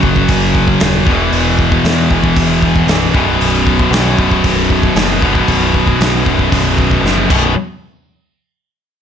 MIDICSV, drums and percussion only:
0, 0, Header, 1, 2, 480
1, 0, Start_track
1, 0, Tempo, 519931
1, 1220, Time_signature, 4, 2, 24, 8
1, 8318, End_track
2, 0, Start_track
2, 0, Title_t, "Drums"
2, 28, Note_on_c, 9, 36, 90
2, 120, Note_off_c, 9, 36, 0
2, 148, Note_on_c, 9, 36, 85
2, 240, Note_off_c, 9, 36, 0
2, 263, Note_on_c, 9, 46, 65
2, 267, Note_on_c, 9, 36, 101
2, 355, Note_off_c, 9, 46, 0
2, 359, Note_off_c, 9, 36, 0
2, 506, Note_on_c, 9, 36, 83
2, 598, Note_off_c, 9, 36, 0
2, 625, Note_on_c, 9, 36, 81
2, 717, Note_off_c, 9, 36, 0
2, 739, Note_on_c, 9, 46, 60
2, 750, Note_on_c, 9, 38, 115
2, 831, Note_off_c, 9, 46, 0
2, 842, Note_off_c, 9, 38, 0
2, 985, Note_on_c, 9, 36, 101
2, 1077, Note_off_c, 9, 36, 0
2, 1225, Note_on_c, 9, 46, 57
2, 1317, Note_off_c, 9, 46, 0
2, 1465, Note_on_c, 9, 36, 82
2, 1558, Note_off_c, 9, 36, 0
2, 1587, Note_on_c, 9, 36, 91
2, 1679, Note_off_c, 9, 36, 0
2, 1707, Note_on_c, 9, 46, 55
2, 1718, Note_on_c, 9, 38, 112
2, 1800, Note_off_c, 9, 46, 0
2, 1811, Note_off_c, 9, 38, 0
2, 1945, Note_on_c, 9, 36, 89
2, 2037, Note_off_c, 9, 36, 0
2, 2065, Note_on_c, 9, 36, 91
2, 2157, Note_off_c, 9, 36, 0
2, 2184, Note_on_c, 9, 36, 106
2, 2185, Note_on_c, 9, 46, 58
2, 2276, Note_off_c, 9, 36, 0
2, 2277, Note_off_c, 9, 46, 0
2, 2423, Note_on_c, 9, 36, 80
2, 2515, Note_off_c, 9, 36, 0
2, 2545, Note_on_c, 9, 36, 82
2, 2637, Note_off_c, 9, 36, 0
2, 2660, Note_on_c, 9, 46, 60
2, 2671, Note_on_c, 9, 38, 110
2, 2752, Note_off_c, 9, 46, 0
2, 2763, Note_off_c, 9, 38, 0
2, 2904, Note_on_c, 9, 36, 100
2, 2997, Note_off_c, 9, 36, 0
2, 3149, Note_on_c, 9, 46, 57
2, 3242, Note_off_c, 9, 46, 0
2, 3385, Note_on_c, 9, 36, 79
2, 3478, Note_off_c, 9, 36, 0
2, 3503, Note_on_c, 9, 36, 84
2, 3596, Note_off_c, 9, 36, 0
2, 3627, Note_on_c, 9, 46, 56
2, 3638, Note_on_c, 9, 38, 110
2, 3719, Note_off_c, 9, 46, 0
2, 3730, Note_off_c, 9, 38, 0
2, 3864, Note_on_c, 9, 36, 88
2, 3957, Note_off_c, 9, 36, 0
2, 3983, Note_on_c, 9, 36, 85
2, 4076, Note_off_c, 9, 36, 0
2, 4099, Note_on_c, 9, 46, 65
2, 4102, Note_on_c, 9, 36, 104
2, 4191, Note_off_c, 9, 46, 0
2, 4195, Note_off_c, 9, 36, 0
2, 4341, Note_on_c, 9, 36, 81
2, 4433, Note_off_c, 9, 36, 0
2, 4462, Note_on_c, 9, 36, 84
2, 4555, Note_off_c, 9, 36, 0
2, 4580, Note_on_c, 9, 46, 60
2, 4591, Note_on_c, 9, 38, 104
2, 4673, Note_off_c, 9, 46, 0
2, 4684, Note_off_c, 9, 38, 0
2, 4823, Note_on_c, 9, 36, 92
2, 4915, Note_off_c, 9, 36, 0
2, 4942, Note_on_c, 9, 36, 89
2, 5034, Note_off_c, 9, 36, 0
2, 5060, Note_on_c, 9, 46, 57
2, 5062, Note_on_c, 9, 36, 85
2, 5153, Note_off_c, 9, 46, 0
2, 5154, Note_off_c, 9, 36, 0
2, 5303, Note_on_c, 9, 36, 77
2, 5395, Note_off_c, 9, 36, 0
2, 5423, Note_on_c, 9, 36, 88
2, 5516, Note_off_c, 9, 36, 0
2, 5545, Note_on_c, 9, 46, 57
2, 5556, Note_on_c, 9, 38, 98
2, 5637, Note_off_c, 9, 46, 0
2, 5649, Note_off_c, 9, 38, 0
2, 5782, Note_on_c, 9, 36, 83
2, 5874, Note_off_c, 9, 36, 0
2, 5902, Note_on_c, 9, 36, 79
2, 5995, Note_off_c, 9, 36, 0
2, 6022, Note_on_c, 9, 36, 104
2, 6026, Note_on_c, 9, 46, 61
2, 6115, Note_off_c, 9, 36, 0
2, 6118, Note_off_c, 9, 46, 0
2, 6263, Note_on_c, 9, 36, 81
2, 6355, Note_off_c, 9, 36, 0
2, 6382, Note_on_c, 9, 36, 73
2, 6475, Note_off_c, 9, 36, 0
2, 6517, Note_on_c, 9, 38, 60
2, 6610, Note_off_c, 9, 38, 0
2, 6627, Note_on_c, 9, 48, 63
2, 6719, Note_off_c, 9, 48, 0
2, 6742, Note_on_c, 9, 36, 103
2, 6745, Note_on_c, 9, 49, 80
2, 6834, Note_off_c, 9, 36, 0
2, 6837, Note_off_c, 9, 49, 0
2, 8318, End_track
0, 0, End_of_file